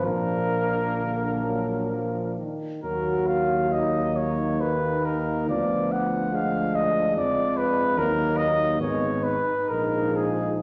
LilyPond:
<<
  \new Staff \with { instrumentName = "Cornet" } { \time 3/4 \key ees \minor \tempo 4 = 68 bes'2~ bes'8 r8 | bes'8 f''8 ees''8 des''8 ces''8 bes'8 | d''8 ges''8 f''8 ees''8 d''8 b'8 | bes'8 ees''8 des''8 ces''8 bes'8 aes'8 | }
  \new Staff \with { instrumentName = "French horn section" } { \time 3/4 \key ees \minor d'2~ d'8 r8 | ges'4 ees'2 | f'4 d'4 d'4 | ees'2. | }
  \new Staff \with { instrumentName = "Euphonium" } { \time 3/4 \key ees \minor bes2~ bes8 r8 | bes2. | b4 aes2 | bes4 ces'8 r8 aes4 | }
  \new Staff \with { instrumentName = "Trombone" } { \clef bass \time 3/4 \key ees \minor f4 d8 ges8 f8 ees8 | ges2 ees4 | f2. | ges4 aes8 r8 f4 | }
  \new Staff \with { instrumentName = "Tuba" } { \clef bass \time 3/4 \key ees \minor bes,,2~ bes,,8 r8 | ees,2. | d,2 f,4 | ees,4 aes,,8 r8 bes,,4 | }
>>